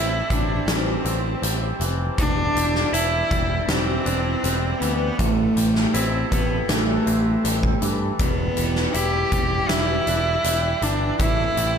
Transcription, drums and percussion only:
0.30 kick, closed hi-hat
0.68 snare, closed hi-hat
1.05 closed hi-hat
1.43 closed hi-hat
1.81 closed hi-hat
2.18 kick, closed hi-hat
2.57 closed hi-hat
2.75 snare
2.94 closed hi-hat
3.31 kick, closed hi-hat
3.69 snare, closed hi-hat
4.06 closed hi-hat
4.44 closed hi-hat
4.82 closed hi-hat
5.19 kick, closed hi-hat
5.57 closed hi-hat
5.75 snare
5.94 closed hi-hat
6.32 kick, closed hi-hat
6.69 snare, closed hi-hat
7.07 closed hi-hat
7.45 closed hi-hat
7.63 kick
7.82 closed hi-hat
8.19 kick, closed hi-hat
8.57 closed hi-hat
8.75 snare
8.94 closed hi-hat
9.32 kick, closed hi-hat
9.69 snare, closed hi-hat
10.07 closed hi-hat
10.44 closed hi-hat
10.82 closed hi-hat
11.19 kick, closed hi-hat
11.57 closed hi-hat

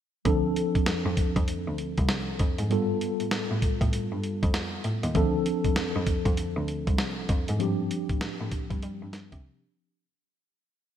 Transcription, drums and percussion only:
0.25 kick, closed hi-hat
0.56 closed hi-hat
0.75 kick, closed hi-hat
0.86 snare, closed hi-hat
1.17 kick, closed hi-hat
1.36 kick, closed hi-hat
1.48 closed hi-hat
1.78 closed hi-hat
1.98 kick, closed hi-hat
2.09 snare, closed hi-hat
2.39 kick, closed hi-hat
2.58 closed hi-hat
2.71 closed hi-hat
3.01 closed hi-hat
3.20 closed hi-hat
3.31 snare, closed hi-hat
3.62 kick, closed hi-hat
3.81 kick, closed hi-hat
3.93 closed hi-hat
4.24 closed hi-hat
4.43 kick, closed hi-hat
4.54 snare, closed hi-hat
4.84 closed hi-hat
5.03 closed hi-hat
5.15 kick, closed hi-hat
5.46 closed hi-hat
5.64 kick, closed hi-hat
5.76 snare, closed hi-hat
6.07 kick, closed hi-hat
6.25 kick, closed hi-hat
6.37 closed hi-hat
6.68 closed hi-hat
6.87 kick, closed hi-hat
6.98 snare, closed hi-hat
7.29 kick, closed hi-hat
7.48 closed hi-hat
7.60 closed hi-hat
7.91 closed hi-hat
8.09 kick, closed hi-hat
8.21 snare, closed hi-hat
8.51 kick, closed hi-hat
8.71 kick, closed hi-hat
8.82 closed hi-hat
9.13 snare, closed hi-hat
9.32 kick, closed hi-hat

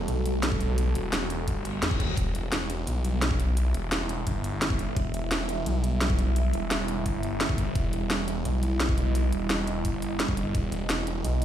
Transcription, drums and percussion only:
0.08 closed hi-hat
0.26 closed hi-hat
0.43 snare, closed hi-hat
0.52 kick
0.60 closed hi-hat
0.78 closed hi-hat
0.95 closed hi-hat
1.13 snare, closed hi-hat
1.30 closed hi-hat
1.48 kick, closed hi-hat
1.65 closed hi-hat
1.83 snare, closed hi-hat
1.91 kick
2.00 kick, closed hi-hat
2.17 kick, closed hi-hat
2.35 closed hi-hat
2.52 snare, closed hi-hat
2.70 closed hi-hat
2.87 closed hi-hat
3.05 closed hi-hat
3.22 snare, closed hi-hat
3.31 kick
3.40 closed hi-hat
3.57 closed hi-hat
3.74 closed hi-hat
3.92 snare, closed hi-hat
4.09 closed hi-hat
4.27 kick, closed hi-hat
4.44 closed hi-hat
4.62 snare, closed hi-hat
4.70 kick
4.79 closed hi-hat
4.97 kick, closed hi-hat
5.14 closed hi-hat
5.31 snare, closed hi-hat
5.49 closed hi-hat
5.66 closed hi-hat
5.84 closed hi-hat
6.01 snare, closed hi-hat
6.10 kick
6.19 closed hi-hat
6.36 closed hi-hat
6.53 closed hi-hat
6.71 snare, closed hi-hat
6.88 closed hi-hat
7.06 kick, closed hi-hat
7.23 closed hi-hat
7.41 snare, closed hi-hat
7.49 kick
7.58 kick, closed hi-hat
7.75 kick, closed hi-hat
7.93 closed hi-hat
8.10 snare, closed hi-hat
8.28 closed hi-hat
8.45 closed hi-hat
8.63 closed hi-hat
8.80 snare, closed hi-hat
8.89 kick
8.98 closed hi-hat
9.15 closed hi-hat
9.33 closed hi-hat
9.50 snare, closed hi-hat
9.67 closed hi-hat
9.85 kick, closed hi-hat
10.02 closed hi-hat
10.20 snare, closed hi-hat
10.29 kick
10.37 closed hi-hat
10.55 kick, closed hi-hat
10.72 closed hi-hat
10.90 snare, closed hi-hat
11.07 closed hi-hat
11.24 closed hi-hat
11.42 closed hi-hat

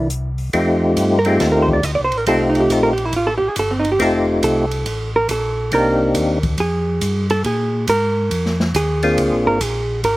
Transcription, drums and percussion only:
0.10 closed hi-hat
0.38 open hi-hat
0.53 kick, ride
0.97 kick, hi-hat pedal, ride
1.25 ride
1.40 kick, snare, ride
1.69 kick
1.83 kick, hi-hat pedal, ride
2.12 ride
2.26 kick, ride
2.55 ride
2.70 kick, hi-hat pedal, ride
2.98 ride
3.13 kick, ride
3.56 kick, hi-hat pedal, ride
3.85 ride
4.00 kick, ride
4.43 kick, hi-hat pedal, ride
4.71 ride
4.86 kick, ride
5.29 kick, hi-hat pedal, ride
5.72 kick, ride
6.15 kick, hi-hat pedal, ride
6.43 kick, ride
6.58 kick, ride
7.01 kick, hi-hat pedal, ride
7.30 ride
7.44 kick, ride
7.87 kick, hi-hat pedal, ride
8.31 kick, ride
8.46 snare
8.60 snare
8.74 kick, hi-hat pedal, ride
9.03 ride
9.18 kick, ride
9.61 kick, hi-hat pedal, ride
10.04 kick, ride

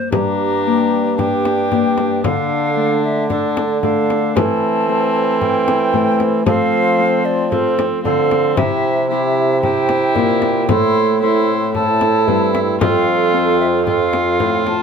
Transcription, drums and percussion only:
0.12 frame drum
1.19 frame drum
1.45 frame drum
1.72 frame drum
1.98 frame drum
2.24 frame drum
3.30 frame drum
3.57 frame drum
3.83 frame drum
4.10 frame drum
4.37 frame drum
5.41 frame drum
5.68 frame drum
5.94 frame drum
6.20 frame drum
6.46 frame drum
7.52 frame drum
7.79 frame drum
8.05 frame drum
8.31 frame drum
8.57 frame drum
9.63 frame drum
9.89 frame drum
10.16 frame drum
10.42 frame drum
10.69 frame drum
11.75 frame drum
12.01 frame drum
12.28 frame drum
12.55 frame drum
12.81 frame drum
13.87 frame drum
14.13 frame drum
14.40 frame drum
14.67 frame drum

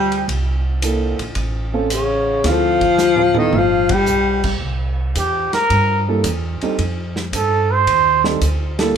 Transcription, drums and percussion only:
0.12 ride
0.28 kick, ride
0.82 hi-hat pedal, ride
1.19 ride
1.35 kick, ride
1.90 hi-hat pedal, ride
2.44 kick, snare, ride
2.81 kick, ride
2.98 snare, hi-hat pedal
3.16 mid tom
3.34 mid tom
3.53 high tom
3.89 kick, ride
4.06 hi-hat pedal
4.44 kick, crash
4.61 kick
5.15 kick, hi-hat pedal, ride
5.53 snare, ride
5.70 kick, ride
6.24 kick, hi-hat pedal, ride
6.61 ride
6.79 kick, ride
7.16 snare
7.33 kick, hi-hat pedal, ride
7.87 kick, ride
8.24 snare
8.41 kick, hi-hat pedal, ride
8.79 snare, ride

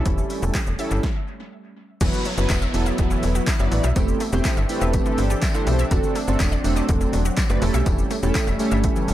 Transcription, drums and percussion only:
0.06 kick, closed hi-hat, shaker
0.18 shaker
0.30 open hi-hat, shaker
0.42 shaker
0.54 kick, snare, clap, closed hi-hat, shaker
0.67 shaker
0.79 open hi-hat, shaker
0.91 shaker
1.03 kick, snare
2.01 kick, closed hi-hat, crash, tambourine, shaker
2.13 shaker
2.25 open hi-hat, tambourine, shaker
2.38 shaker
2.49 kick, snare, clap, closed hi-hat, tambourine, shaker
2.62 shaker
2.74 open hi-hat, tambourine, shaker
2.86 shaker
2.98 kick, closed hi-hat, shaker
3.11 shaker
3.23 open hi-hat, tambourine, shaker
3.35 shaker
3.47 kick, snare, clap, closed hi-hat, tambourine, shaker
3.59 shaker
3.72 open hi-hat, tambourine, shaker
3.84 shaker
3.96 kick, closed hi-hat, tambourine, shaker
4.08 shaker
4.20 open hi-hat, tambourine, shaker
4.33 shaker
4.44 kick, snare, clap, closed hi-hat, tambourine, shaker
4.57 shaker
4.69 open hi-hat, tambourine, shaker
4.81 shaker
4.94 kick, closed hi-hat, tambourine, shaker
5.06 shaker
5.18 open hi-hat, shaker
5.30 shaker
5.42 kick, snare, clap, closed hi-hat, tambourine, shaker
5.54 shaker
5.67 open hi-hat, tambourine, shaker
5.79 shaker
5.91 kick, closed hi-hat, tambourine, shaker
6.03 shaker
6.15 open hi-hat, tambourine, shaker
6.28 shaker
6.40 kick, snare, clap, closed hi-hat, tambourine, shaker
6.52 shaker
6.64 open hi-hat, tambourine, shaker
6.76 shaker
6.89 kick, closed hi-hat, shaker
7.01 shaker
7.13 open hi-hat, tambourine, shaker
7.25 shaker
7.37 kick, snare, clap, closed hi-hat, tambourine, shaker
7.50 shaker
7.62 open hi-hat, tambourine, shaker
7.74 shaker
7.86 kick, closed hi-hat, tambourine, shaker
7.98 shaker
8.11 open hi-hat, tambourine, shaker
8.23 shaker
8.35 kick, snare, clap, closed hi-hat, tambourine, shaker
8.47 shaker
8.59 open hi-hat, tambourine, shaker
8.71 shaker
8.84 kick, closed hi-hat, shaker
8.96 shaker
9.08 open hi-hat, tambourine, shaker

